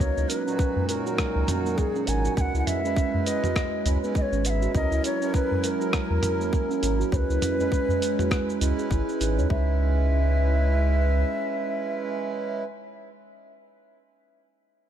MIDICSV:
0, 0, Header, 1, 9, 480
1, 0, Start_track
1, 0, Time_signature, 4, 2, 24, 8
1, 0, Tempo, 594059
1, 12037, End_track
2, 0, Start_track
2, 0, Title_t, "Native American-style wooden flute"
2, 0, Program_c, 0, 77
2, 0, Note_on_c, 0, 73, 98
2, 232, Note_on_c, 0, 71, 96
2, 245, Note_off_c, 0, 73, 0
2, 710, Note_off_c, 0, 71, 0
2, 714, Note_on_c, 0, 71, 90
2, 744, Note_on_c, 0, 70, 98
2, 752, Note_off_c, 0, 71, 0
2, 1387, Note_off_c, 0, 70, 0
2, 1387, Note_on_c, 0, 70, 71
2, 1433, Note_on_c, 0, 68, 102
2, 1445, Note_off_c, 0, 70, 0
2, 1675, Note_on_c, 0, 80, 102
2, 1687, Note_off_c, 0, 68, 0
2, 1907, Note_off_c, 0, 80, 0
2, 1912, Note_on_c, 0, 80, 105
2, 1948, Note_on_c, 0, 78, 114
2, 1956, Note_off_c, 0, 80, 0
2, 2088, Note_off_c, 0, 78, 0
2, 2093, Note_on_c, 0, 78, 81
2, 2156, Note_on_c, 0, 76, 109
2, 2168, Note_off_c, 0, 78, 0
2, 2639, Note_on_c, 0, 75, 96
2, 2651, Note_off_c, 0, 76, 0
2, 3143, Note_off_c, 0, 75, 0
2, 3370, Note_on_c, 0, 75, 99
2, 3410, Note_on_c, 0, 73, 108
2, 3418, Note_off_c, 0, 75, 0
2, 3606, Note_on_c, 0, 78, 97
2, 3618, Note_off_c, 0, 73, 0
2, 3633, Note_on_c, 0, 76, 105
2, 3642, Note_off_c, 0, 78, 0
2, 3841, Note_off_c, 0, 76, 0
2, 3845, Note_on_c, 0, 75, 111
2, 4064, Note_off_c, 0, 75, 0
2, 4085, Note_on_c, 0, 73, 106
2, 4304, Note_off_c, 0, 73, 0
2, 4324, Note_on_c, 0, 71, 105
2, 4563, Note_off_c, 0, 71, 0
2, 4563, Note_on_c, 0, 71, 89
2, 4597, Note_on_c, 0, 70, 96
2, 4605, Note_off_c, 0, 71, 0
2, 5520, Note_off_c, 0, 70, 0
2, 5753, Note_on_c, 0, 73, 117
2, 5788, Note_on_c, 0, 71, 127
2, 5796, Note_off_c, 0, 73, 0
2, 7163, Note_off_c, 0, 71, 0
2, 7678, Note_on_c, 0, 76, 96
2, 10211, Note_off_c, 0, 76, 0
2, 12037, End_track
3, 0, Start_track
3, 0, Title_t, "Ambient pad"
3, 0, Program_c, 1, 92
3, 0, Note_on_c, 1, 54, 83
3, 0, Note_on_c, 1, 61, 88
3, 0, Note_on_c, 1, 73, 74
3, 172, Note_on_c, 1, 46, 77
3, 237, Note_on_c, 1, 63, 96
3, 515, Note_on_c, 1, 70, 93
3, 753, Note_off_c, 1, 73, 0
3, 769, Note_off_c, 1, 61, 0
3, 874, Note_on_c, 1, 78, 88
3, 1912, Note_off_c, 1, 63, 0
3, 1914, Note_off_c, 1, 70, 0
3, 1915, Note_off_c, 1, 54, 0
3, 1916, Note_off_c, 1, 46, 0
3, 1916, Note_on_c, 1, 56, 72
3, 2107, Note_on_c, 1, 61, 93
3, 2283, Note_on_c, 1, 71, 98
3, 2425, Note_on_c, 1, 64, 75
3, 2691, Note_off_c, 1, 78, 0
3, 2785, Note_on_c, 1, 73, 93
3, 3830, Note_on_c, 1, 54, 85
3, 3833, Note_off_c, 1, 71, 0
3, 3836, Note_off_c, 1, 56, 0
3, 4370, Note_on_c, 1, 70, 84
3, 5752, Note_on_c, 1, 56, 88
3, 5754, Note_off_c, 1, 54, 0
3, 5759, Note_off_c, 1, 70, 0
3, 6157, Note_on_c, 1, 71, 97
3, 7670, Note_off_c, 1, 61, 0
3, 7672, Note_off_c, 1, 56, 0
3, 7672, Note_off_c, 1, 73, 0
3, 7674, Note_off_c, 1, 64, 0
3, 7677, Note_off_c, 1, 71, 0
3, 7682, Note_on_c, 1, 56, 83
3, 7766, Note_on_c, 1, 61, 77
3, 7836, Note_on_c, 1, 64, 86
3, 7900, Note_on_c, 1, 71, 85
3, 7971, Note_on_c, 1, 73, 80
3, 10210, Note_off_c, 1, 73, 0
3, 10211, Note_off_c, 1, 64, 0
3, 10213, Note_off_c, 1, 71, 0
3, 10214, Note_off_c, 1, 56, 0
3, 10214, Note_off_c, 1, 61, 0
3, 12037, End_track
4, 0, Start_track
4, 0, Title_t, "Harmonium"
4, 0, Program_c, 2, 20
4, 0, Note_on_c, 2, 54, 96
4, 0, Note_on_c, 2, 58, 83
4, 0, Note_on_c, 2, 63, 85
4, 2, Note_on_c, 2, 70, 98
4, 336, Note_off_c, 2, 54, 0
4, 338, Note_off_c, 2, 58, 0
4, 342, Note_off_c, 2, 63, 0
4, 345, Note_off_c, 2, 70, 0
4, 357, Note_on_c, 2, 54, 99
4, 368, Note_on_c, 2, 46, 88
4, 380, Note_on_c, 2, 63, 88
4, 389, Note_on_c, 2, 66, 108
4, 1883, Note_off_c, 2, 54, 0
4, 1889, Note_off_c, 2, 46, 0
4, 1895, Note_off_c, 2, 63, 0
4, 1899, Note_off_c, 2, 66, 0
4, 1906, Note_on_c, 2, 56, 87
4, 1912, Note_on_c, 2, 61, 81
4, 1918, Note_on_c, 2, 64, 74
4, 1923, Note_on_c, 2, 71, 87
4, 2257, Note_off_c, 2, 56, 0
4, 2260, Note_off_c, 2, 61, 0
4, 2263, Note_off_c, 2, 64, 0
4, 2265, Note_off_c, 2, 71, 0
4, 2279, Note_on_c, 2, 56, 99
4, 2290, Note_on_c, 2, 61, 95
4, 2300, Note_on_c, 2, 64, 88
4, 2312, Note_on_c, 2, 71, 110
4, 3088, Note_off_c, 2, 56, 0
4, 3094, Note_off_c, 2, 61, 0
4, 3099, Note_off_c, 2, 64, 0
4, 3105, Note_off_c, 2, 71, 0
4, 3110, Note_on_c, 2, 56, 79
4, 3116, Note_on_c, 2, 61, 70
4, 3121, Note_on_c, 2, 64, 75
4, 3126, Note_on_c, 2, 71, 90
4, 3219, Note_off_c, 2, 56, 0
4, 3222, Note_off_c, 2, 61, 0
4, 3224, Note_off_c, 2, 64, 0
4, 3226, Note_off_c, 2, 71, 0
4, 3246, Note_on_c, 2, 56, 104
4, 3251, Note_on_c, 2, 61, 95
4, 3258, Note_on_c, 2, 64, 97
4, 3264, Note_on_c, 2, 71, 108
4, 3568, Note_off_c, 2, 56, 0
4, 3570, Note_off_c, 2, 61, 0
4, 3574, Note_off_c, 2, 64, 0
4, 3577, Note_off_c, 2, 71, 0
4, 3589, Note_on_c, 2, 56, 82
4, 3592, Note_on_c, 2, 61, 77
4, 3601, Note_on_c, 2, 64, 69
4, 3606, Note_on_c, 2, 71, 87
4, 3809, Note_off_c, 2, 56, 0
4, 3810, Note_off_c, 2, 61, 0
4, 3814, Note_off_c, 2, 64, 0
4, 3817, Note_off_c, 2, 71, 0
4, 3827, Note_on_c, 2, 54, 94
4, 3832, Note_on_c, 2, 61, 82
4, 3838, Note_on_c, 2, 64, 85
4, 3844, Note_on_c, 2, 70, 103
4, 4177, Note_off_c, 2, 54, 0
4, 4180, Note_off_c, 2, 61, 0
4, 4183, Note_off_c, 2, 64, 0
4, 4185, Note_off_c, 2, 70, 0
4, 4197, Note_on_c, 2, 54, 102
4, 4208, Note_on_c, 2, 61, 95
4, 4221, Note_on_c, 2, 64, 89
4, 4231, Note_on_c, 2, 70, 108
4, 5723, Note_off_c, 2, 54, 0
4, 5729, Note_off_c, 2, 61, 0
4, 5735, Note_off_c, 2, 64, 0
4, 5741, Note_off_c, 2, 70, 0
4, 5745, Note_on_c, 2, 56, 82
4, 5749, Note_on_c, 2, 61, 77
4, 5755, Note_on_c, 2, 64, 78
4, 5761, Note_on_c, 2, 71, 89
4, 6096, Note_off_c, 2, 56, 0
4, 6098, Note_off_c, 2, 61, 0
4, 6101, Note_off_c, 2, 64, 0
4, 6104, Note_off_c, 2, 71, 0
4, 6118, Note_on_c, 2, 56, 94
4, 6128, Note_on_c, 2, 61, 90
4, 6140, Note_on_c, 2, 64, 90
4, 6151, Note_on_c, 2, 71, 108
4, 6928, Note_off_c, 2, 56, 0
4, 6933, Note_off_c, 2, 61, 0
4, 6939, Note_off_c, 2, 64, 0
4, 6940, Note_on_c, 2, 56, 99
4, 6944, Note_off_c, 2, 71, 0
4, 6950, Note_on_c, 2, 61, 98
4, 6960, Note_on_c, 2, 64, 87
4, 6973, Note_on_c, 2, 71, 118
4, 7641, Note_off_c, 2, 56, 0
4, 7649, Note_off_c, 2, 61, 0
4, 7653, Note_on_c, 2, 56, 100
4, 7654, Note_off_c, 2, 64, 0
4, 7660, Note_off_c, 2, 71, 0
4, 7669, Note_on_c, 2, 61, 85
4, 7684, Note_on_c, 2, 64, 85
4, 7701, Note_on_c, 2, 71, 108
4, 10199, Note_off_c, 2, 56, 0
4, 10207, Note_off_c, 2, 61, 0
4, 10214, Note_off_c, 2, 64, 0
4, 10223, Note_off_c, 2, 71, 0
4, 12037, End_track
5, 0, Start_track
5, 0, Title_t, "Singing bowl"
5, 0, Program_c, 3, 14
5, 0, Note_on_c, 3, 61, 74
5, 7688, Note_off_c, 3, 61, 0
5, 12037, End_track
6, 0, Start_track
6, 0, Title_t, "Steel tongue drum"
6, 0, Program_c, 4, 114
6, 0, Note_on_c, 4, 61, 82
6, 129, Note_off_c, 4, 61, 0
6, 135, Note_on_c, 4, 63, 77
6, 226, Note_off_c, 4, 63, 0
6, 237, Note_on_c, 4, 61, 78
6, 362, Note_off_c, 4, 61, 0
6, 372, Note_on_c, 4, 61, 104
6, 465, Note_off_c, 4, 61, 0
6, 616, Note_on_c, 4, 56, 76
6, 707, Note_off_c, 4, 56, 0
6, 716, Note_on_c, 4, 70, 103
6, 841, Note_off_c, 4, 70, 0
6, 856, Note_on_c, 4, 66, 110
6, 914, Note_off_c, 4, 66, 0
6, 957, Note_on_c, 4, 56, 80
6, 1088, Note_off_c, 4, 56, 0
6, 1102, Note_on_c, 4, 70, 78
6, 1190, Note_off_c, 4, 70, 0
6, 1204, Note_on_c, 4, 61, 78
6, 1332, Note_off_c, 4, 61, 0
6, 1341, Note_on_c, 4, 58, 77
6, 1430, Note_off_c, 4, 58, 0
6, 1444, Note_on_c, 4, 56, 77
6, 1572, Note_off_c, 4, 56, 0
6, 1582, Note_on_c, 4, 61, 103
6, 1670, Note_off_c, 4, 61, 0
6, 1683, Note_on_c, 4, 70, 109
6, 1805, Note_off_c, 4, 70, 0
6, 1821, Note_on_c, 4, 66, 98
6, 1876, Note_off_c, 4, 66, 0
6, 1922, Note_on_c, 4, 61, 79
6, 2051, Note_off_c, 4, 61, 0
6, 2062, Note_on_c, 4, 64, 77
6, 2150, Note_off_c, 4, 64, 0
6, 2162, Note_on_c, 4, 61, 77
6, 2291, Note_off_c, 4, 61, 0
6, 2300, Note_on_c, 4, 61, 97
6, 2389, Note_off_c, 4, 61, 0
6, 2403, Note_on_c, 4, 61, 105
6, 2524, Note_off_c, 4, 61, 0
6, 2538, Note_on_c, 4, 56, 76
6, 2628, Note_off_c, 4, 56, 0
6, 2641, Note_on_c, 4, 71, 108
6, 2763, Note_off_c, 4, 71, 0
6, 2776, Note_on_c, 4, 66, 105
6, 2833, Note_off_c, 4, 66, 0
6, 2883, Note_on_c, 4, 56, 85
6, 3012, Note_off_c, 4, 56, 0
6, 3018, Note_on_c, 4, 71, 82
6, 3108, Note_off_c, 4, 71, 0
6, 3121, Note_on_c, 4, 61, 77
6, 3250, Note_off_c, 4, 61, 0
6, 3257, Note_on_c, 4, 59, 73
6, 3348, Note_off_c, 4, 59, 0
6, 3357, Note_on_c, 4, 56, 84
6, 3488, Note_off_c, 4, 56, 0
6, 3495, Note_on_c, 4, 61, 107
6, 3587, Note_off_c, 4, 61, 0
6, 3598, Note_on_c, 4, 71, 107
6, 3722, Note_off_c, 4, 71, 0
6, 3732, Note_on_c, 4, 66, 102
6, 3792, Note_off_c, 4, 66, 0
6, 3830, Note_on_c, 4, 61, 78
6, 3965, Note_off_c, 4, 61, 0
6, 3971, Note_on_c, 4, 64, 78
6, 4065, Note_off_c, 4, 64, 0
6, 4075, Note_on_c, 4, 61, 83
6, 4203, Note_off_c, 4, 61, 0
6, 4213, Note_on_c, 4, 61, 103
6, 4305, Note_off_c, 4, 61, 0
6, 4453, Note_on_c, 4, 56, 83
6, 4546, Note_off_c, 4, 56, 0
6, 4557, Note_on_c, 4, 70, 106
6, 4682, Note_off_c, 4, 70, 0
6, 4694, Note_on_c, 4, 66, 104
6, 4753, Note_off_c, 4, 66, 0
6, 4802, Note_on_c, 4, 56, 83
6, 4931, Note_off_c, 4, 56, 0
6, 4941, Note_on_c, 4, 70, 81
6, 5029, Note_off_c, 4, 70, 0
6, 5035, Note_on_c, 4, 61, 74
6, 5167, Note_off_c, 4, 61, 0
6, 5172, Note_on_c, 4, 58, 82
6, 5265, Note_off_c, 4, 58, 0
6, 5279, Note_on_c, 4, 56, 83
6, 5409, Note_off_c, 4, 56, 0
6, 5413, Note_on_c, 4, 61, 111
6, 5505, Note_off_c, 4, 61, 0
6, 5514, Note_on_c, 4, 70, 107
6, 5640, Note_off_c, 4, 70, 0
6, 5653, Note_on_c, 4, 66, 101
6, 5712, Note_off_c, 4, 66, 0
6, 5892, Note_on_c, 4, 64, 74
6, 5985, Note_off_c, 4, 64, 0
6, 5993, Note_on_c, 4, 61, 80
6, 6119, Note_off_c, 4, 61, 0
6, 6129, Note_on_c, 4, 61, 105
6, 6220, Note_off_c, 4, 61, 0
6, 6230, Note_on_c, 4, 61, 112
6, 6358, Note_off_c, 4, 61, 0
6, 6374, Note_on_c, 4, 56, 81
6, 6466, Note_off_c, 4, 56, 0
6, 6478, Note_on_c, 4, 71, 110
6, 6602, Note_off_c, 4, 71, 0
6, 6614, Note_on_c, 4, 66, 110
6, 6672, Note_off_c, 4, 66, 0
6, 6716, Note_on_c, 4, 56, 86
6, 6848, Note_off_c, 4, 56, 0
6, 6852, Note_on_c, 4, 71, 83
6, 6945, Note_off_c, 4, 71, 0
6, 6953, Note_on_c, 4, 64, 76
6, 7080, Note_off_c, 4, 64, 0
6, 7095, Note_on_c, 4, 68, 81
6, 7191, Note_off_c, 4, 68, 0
6, 7198, Note_on_c, 4, 64, 84
6, 7329, Note_off_c, 4, 64, 0
6, 7337, Note_on_c, 4, 61, 80
6, 7428, Note_off_c, 4, 61, 0
6, 7437, Note_on_c, 4, 63, 81
6, 7516, Note_off_c, 4, 63, 0
6, 7582, Note_on_c, 4, 73, 98
6, 7636, Note_off_c, 4, 73, 0
6, 7683, Note_on_c, 4, 61, 84
6, 7903, Note_off_c, 4, 61, 0
6, 12037, End_track
7, 0, Start_track
7, 0, Title_t, "Sub bass"
7, 0, Program_c, 5, 38
7, 0, Note_on_c, 5, 37, 105
7, 87, Note_off_c, 5, 37, 0
7, 139, Note_on_c, 5, 37, 85
7, 204, Note_off_c, 5, 37, 0
7, 1096, Note_on_c, 5, 37, 103
7, 1162, Note_off_c, 5, 37, 0
7, 1679, Note_on_c, 5, 32, 86
7, 1847, Note_off_c, 5, 32, 0
7, 1918, Note_on_c, 5, 37, 103
7, 2008, Note_off_c, 5, 37, 0
7, 2053, Note_on_c, 5, 37, 90
7, 2120, Note_off_c, 5, 37, 0
7, 3116, Note_on_c, 5, 37, 108
7, 3207, Note_off_c, 5, 37, 0
7, 3491, Note_on_c, 5, 32, 101
7, 3778, Note_off_c, 5, 32, 0
7, 3834, Note_on_c, 5, 37, 104
7, 3926, Note_off_c, 5, 37, 0
7, 3970, Note_on_c, 5, 37, 88
7, 4039, Note_off_c, 5, 37, 0
7, 4932, Note_on_c, 5, 40, 103
7, 5000, Note_off_c, 5, 40, 0
7, 5518, Note_on_c, 5, 32, 92
7, 5687, Note_off_c, 5, 32, 0
7, 5755, Note_on_c, 5, 37, 107
7, 5846, Note_off_c, 5, 37, 0
7, 5896, Note_on_c, 5, 37, 87
7, 5962, Note_off_c, 5, 37, 0
7, 6960, Note_on_c, 5, 37, 102
7, 7049, Note_off_c, 5, 37, 0
7, 7195, Note_on_c, 5, 32, 88
7, 7286, Note_off_c, 5, 32, 0
7, 7439, Note_on_c, 5, 32, 95
7, 7578, Note_on_c, 5, 40, 94
7, 7590, Note_off_c, 5, 32, 0
7, 7643, Note_off_c, 5, 40, 0
7, 7676, Note_on_c, 5, 37, 96
7, 9084, Note_off_c, 5, 37, 0
7, 12037, End_track
8, 0, Start_track
8, 0, Title_t, "Udu"
8, 615, Note_on_c, 9, 64, 87
8, 696, Note_off_c, 9, 64, 0
8, 2538, Note_on_c, 9, 64, 85
8, 2619, Note_off_c, 9, 64, 0
8, 3118, Note_on_c, 9, 64, 98
8, 3199, Note_off_c, 9, 64, 0
8, 4455, Note_on_c, 9, 64, 76
8, 4536, Note_off_c, 9, 64, 0
8, 6142, Note_on_c, 9, 64, 82
8, 6222, Note_off_c, 9, 64, 0
8, 6370, Note_on_c, 9, 64, 95
8, 6451, Note_off_c, 9, 64, 0
8, 6953, Note_on_c, 9, 64, 96
8, 7034, Note_off_c, 9, 64, 0
8, 12037, End_track
9, 0, Start_track
9, 0, Title_t, "Drums"
9, 0, Note_on_c, 9, 36, 110
9, 6, Note_on_c, 9, 69, 49
9, 77, Note_off_c, 9, 36, 0
9, 86, Note_off_c, 9, 69, 0
9, 143, Note_on_c, 9, 69, 32
9, 223, Note_off_c, 9, 69, 0
9, 240, Note_on_c, 9, 42, 94
9, 245, Note_on_c, 9, 69, 84
9, 321, Note_off_c, 9, 42, 0
9, 326, Note_off_c, 9, 69, 0
9, 385, Note_on_c, 9, 69, 33
9, 466, Note_off_c, 9, 69, 0
9, 476, Note_on_c, 9, 36, 115
9, 483, Note_on_c, 9, 69, 43
9, 557, Note_off_c, 9, 36, 0
9, 564, Note_off_c, 9, 69, 0
9, 717, Note_on_c, 9, 42, 90
9, 722, Note_on_c, 9, 69, 75
9, 798, Note_off_c, 9, 42, 0
9, 803, Note_off_c, 9, 69, 0
9, 861, Note_on_c, 9, 69, 34
9, 941, Note_off_c, 9, 69, 0
9, 956, Note_on_c, 9, 36, 99
9, 957, Note_on_c, 9, 37, 74
9, 963, Note_on_c, 9, 69, 45
9, 1037, Note_off_c, 9, 36, 0
9, 1038, Note_off_c, 9, 37, 0
9, 1044, Note_off_c, 9, 69, 0
9, 1197, Note_on_c, 9, 42, 93
9, 1197, Note_on_c, 9, 45, 83
9, 1202, Note_on_c, 9, 69, 81
9, 1278, Note_off_c, 9, 42, 0
9, 1278, Note_off_c, 9, 45, 0
9, 1283, Note_off_c, 9, 69, 0
9, 1342, Note_on_c, 9, 69, 35
9, 1423, Note_off_c, 9, 69, 0
9, 1436, Note_on_c, 9, 36, 102
9, 1441, Note_on_c, 9, 69, 43
9, 1517, Note_off_c, 9, 36, 0
9, 1522, Note_off_c, 9, 69, 0
9, 1579, Note_on_c, 9, 69, 29
9, 1660, Note_off_c, 9, 69, 0
9, 1674, Note_on_c, 9, 42, 93
9, 1679, Note_on_c, 9, 69, 80
9, 1755, Note_off_c, 9, 42, 0
9, 1760, Note_off_c, 9, 69, 0
9, 1816, Note_on_c, 9, 69, 32
9, 1897, Note_off_c, 9, 69, 0
9, 1916, Note_on_c, 9, 36, 109
9, 1921, Note_on_c, 9, 69, 45
9, 1996, Note_off_c, 9, 36, 0
9, 2002, Note_off_c, 9, 69, 0
9, 2060, Note_on_c, 9, 69, 35
9, 2141, Note_off_c, 9, 69, 0
9, 2159, Note_on_c, 9, 42, 89
9, 2159, Note_on_c, 9, 45, 64
9, 2164, Note_on_c, 9, 69, 76
9, 2240, Note_off_c, 9, 42, 0
9, 2240, Note_off_c, 9, 45, 0
9, 2245, Note_off_c, 9, 69, 0
9, 2306, Note_on_c, 9, 69, 33
9, 2387, Note_off_c, 9, 69, 0
9, 2395, Note_on_c, 9, 36, 106
9, 2405, Note_on_c, 9, 69, 44
9, 2476, Note_off_c, 9, 36, 0
9, 2486, Note_off_c, 9, 69, 0
9, 2638, Note_on_c, 9, 42, 90
9, 2643, Note_on_c, 9, 69, 80
9, 2719, Note_off_c, 9, 42, 0
9, 2724, Note_off_c, 9, 69, 0
9, 2777, Note_on_c, 9, 45, 61
9, 2782, Note_on_c, 9, 69, 32
9, 2858, Note_off_c, 9, 45, 0
9, 2863, Note_off_c, 9, 69, 0
9, 2874, Note_on_c, 9, 36, 98
9, 2878, Note_on_c, 9, 37, 77
9, 2884, Note_on_c, 9, 69, 43
9, 2955, Note_off_c, 9, 36, 0
9, 2959, Note_off_c, 9, 37, 0
9, 2964, Note_off_c, 9, 69, 0
9, 3116, Note_on_c, 9, 42, 91
9, 3121, Note_on_c, 9, 69, 78
9, 3197, Note_off_c, 9, 42, 0
9, 3202, Note_off_c, 9, 69, 0
9, 3263, Note_on_c, 9, 69, 29
9, 3344, Note_off_c, 9, 69, 0
9, 3354, Note_on_c, 9, 36, 105
9, 3360, Note_on_c, 9, 69, 41
9, 3435, Note_off_c, 9, 36, 0
9, 3441, Note_off_c, 9, 69, 0
9, 3498, Note_on_c, 9, 69, 32
9, 3578, Note_off_c, 9, 69, 0
9, 3593, Note_on_c, 9, 42, 91
9, 3599, Note_on_c, 9, 69, 81
9, 3674, Note_off_c, 9, 42, 0
9, 3680, Note_off_c, 9, 69, 0
9, 3736, Note_on_c, 9, 69, 31
9, 3817, Note_off_c, 9, 69, 0
9, 3834, Note_on_c, 9, 36, 113
9, 3838, Note_on_c, 9, 69, 46
9, 3915, Note_off_c, 9, 36, 0
9, 3919, Note_off_c, 9, 69, 0
9, 3976, Note_on_c, 9, 69, 34
9, 4057, Note_off_c, 9, 69, 0
9, 4074, Note_on_c, 9, 42, 94
9, 4079, Note_on_c, 9, 69, 76
9, 4154, Note_off_c, 9, 42, 0
9, 4160, Note_off_c, 9, 69, 0
9, 4218, Note_on_c, 9, 69, 32
9, 4299, Note_off_c, 9, 69, 0
9, 4314, Note_on_c, 9, 36, 104
9, 4321, Note_on_c, 9, 69, 43
9, 4394, Note_off_c, 9, 36, 0
9, 4402, Note_off_c, 9, 69, 0
9, 4554, Note_on_c, 9, 42, 91
9, 4560, Note_on_c, 9, 69, 76
9, 4635, Note_off_c, 9, 42, 0
9, 4640, Note_off_c, 9, 69, 0
9, 4696, Note_on_c, 9, 69, 31
9, 4777, Note_off_c, 9, 69, 0
9, 4793, Note_on_c, 9, 36, 102
9, 4793, Note_on_c, 9, 37, 79
9, 4798, Note_on_c, 9, 69, 43
9, 4873, Note_off_c, 9, 37, 0
9, 4874, Note_off_c, 9, 36, 0
9, 4879, Note_off_c, 9, 69, 0
9, 5031, Note_on_c, 9, 42, 95
9, 5031, Note_on_c, 9, 45, 90
9, 5037, Note_on_c, 9, 69, 76
9, 5112, Note_off_c, 9, 42, 0
9, 5112, Note_off_c, 9, 45, 0
9, 5117, Note_off_c, 9, 69, 0
9, 5179, Note_on_c, 9, 69, 30
9, 5260, Note_off_c, 9, 69, 0
9, 5274, Note_on_c, 9, 36, 106
9, 5282, Note_on_c, 9, 69, 42
9, 5355, Note_off_c, 9, 36, 0
9, 5363, Note_off_c, 9, 69, 0
9, 5420, Note_on_c, 9, 69, 30
9, 5501, Note_off_c, 9, 69, 0
9, 5517, Note_on_c, 9, 42, 97
9, 5522, Note_on_c, 9, 69, 81
9, 5597, Note_off_c, 9, 42, 0
9, 5603, Note_off_c, 9, 69, 0
9, 5663, Note_on_c, 9, 69, 30
9, 5744, Note_off_c, 9, 69, 0
9, 5755, Note_on_c, 9, 36, 109
9, 5765, Note_on_c, 9, 69, 46
9, 5836, Note_off_c, 9, 36, 0
9, 5846, Note_off_c, 9, 69, 0
9, 5900, Note_on_c, 9, 69, 33
9, 5981, Note_off_c, 9, 69, 0
9, 5997, Note_on_c, 9, 42, 98
9, 5997, Note_on_c, 9, 45, 67
9, 6002, Note_on_c, 9, 69, 80
9, 6078, Note_off_c, 9, 42, 0
9, 6078, Note_off_c, 9, 45, 0
9, 6083, Note_off_c, 9, 69, 0
9, 6142, Note_on_c, 9, 69, 32
9, 6223, Note_off_c, 9, 69, 0
9, 6235, Note_on_c, 9, 36, 102
9, 6248, Note_on_c, 9, 69, 41
9, 6316, Note_off_c, 9, 36, 0
9, 6329, Note_off_c, 9, 69, 0
9, 6385, Note_on_c, 9, 69, 33
9, 6466, Note_off_c, 9, 69, 0
9, 6482, Note_on_c, 9, 42, 100
9, 6487, Note_on_c, 9, 69, 72
9, 6562, Note_off_c, 9, 42, 0
9, 6568, Note_off_c, 9, 69, 0
9, 6619, Note_on_c, 9, 45, 60
9, 6624, Note_on_c, 9, 69, 31
9, 6700, Note_off_c, 9, 45, 0
9, 6705, Note_off_c, 9, 69, 0
9, 6715, Note_on_c, 9, 36, 102
9, 6719, Note_on_c, 9, 37, 76
9, 6724, Note_on_c, 9, 69, 44
9, 6796, Note_off_c, 9, 36, 0
9, 6799, Note_off_c, 9, 37, 0
9, 6805, Note_off_c, 9, 69, 0
9, 6864, Note_on_c, 9, 69, 32
9, 6945, Note_off_c, 9, 69, 0
9, 6960, Note_on_c, 9, 42, 97
9, 6965, Note_on_c, 9, 69, 84
9, 7041, Note_off_c, 9, 42, 0
9, 7046, Note_off_c, 9, 69, 0
9, 7103, Note_on_c, 9, 69, 31
9, 7184, Note_off_c, 9, 69, 0
9, 7197, Note_on_c, 9, 36, 104
9, 7206, Note_on_c, 9, 69, 42
9, 7277, Note_off_c, 9, 36, 0
9, 7286, Note_off_c, 9, 69, 0
9, 7344, Note_on_c, 9, 69, 31
9, 7425, Note_off_c, 9, 69, 0
9, 7440, Note_on_c, 9, 42, 96
9, 7446, Note_on_c, 9, 69, 78
9, 7521, Note_off_c, 9, 42, 0
9, 7527, Note_off_c, 9, 69, 0
9, 7585, Note_on_c, 9, 69, 32
9, 7665, Note_off_c, 9, 69, 0
9, 7677, Note_on_c, 9, 36, 107
9, 7758, Note_off_c, 9, 36, 0
9, 12037, End_track
0, 0, End_of_file